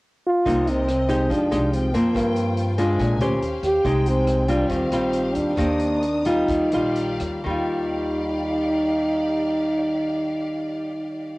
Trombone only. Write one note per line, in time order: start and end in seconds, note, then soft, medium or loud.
0.26 0.70 F4 loud
0.69 1.34 C4 medium
1.32 1.77 D4 medium
1.75 1.98 C4 medium
1.96 2.80 A#3 medium
3.66 4.10 G4 loud
4.08 4.52 C4 medium
4.50 4.73 D4 medium
4.71 5.37 C4 medium
5.36 6.28 D4 medium
6.26 7.21 D#4 medium
7.47 11.38 D#4 medium